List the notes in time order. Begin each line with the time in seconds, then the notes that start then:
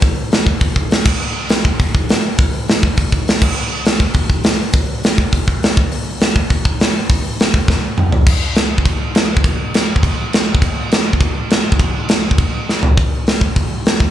0.01 kick, open hi-hat
0.32 snare, open hi-hat
0.47 kick
0.61 kick, open hi-hat
0.76 kick
0.91 snare, open hi-hat
1.05 kick, crash
1.49 snare, open hi-hat
1.65 kick
1.79 kick, open hi-hat
1.95 kick
2.09 snare, open hi-hat
2.38 kick, open hi-hat
2.68 snare, open hi-hat
2.83 kick
2.97 kick, open hi-hat
3.12 kick
3.28 snare, open hi-hat
3.42 kick, crash
3.85 snare, open hi-hat
4.00 kick
4.14 kick, open hi-hat
4.30 kick
4.44 snare, open hi-hat
4.73 kick, open hi-hat
5.04 snare, open hi-hat
5.18 kick
5.33 kick, open hi-hat
5.48 kick
5.63 snare, open hi-hat
5.77 kick
5.92 open hi-hat
6.20 snare, open hi-hat
6.36 kick
6.50 kick, open hi-hat
6.65 kick
6.80 snare, open hi-hat
7.09 kick, open hi-hat
7.40 snare, open hi-hat
7.54 kick
7.68 kick, snare
7.98 mid tom
8.12 floor tom
8.26 kick, crash
8.55 snare, crash
8.78 kick
8.85 kick, crash
9.15 snare, crash
9.37 kick
9.44 kick, crash
9.74 snare, crash
9.96 kick
10.03 kick, crash
10.33 snare, crash
10.55 kick
10.62 kick, crash
10.91 snare, crash
11.13 kick
11.21 kick, crash
11.50 snare, crash
11.72 kick
11.79 kick, crash
12.09 snare, crash
12.31 kick
12.38 kick, crash
12.69 snare
12.83 floor tom
12.97 kick, open hi-hat
13.27 snare, open hi-hat
13.41 kick
13.56 kick, open hi-hat
13.86 snare, open hi-hat
14.00 kick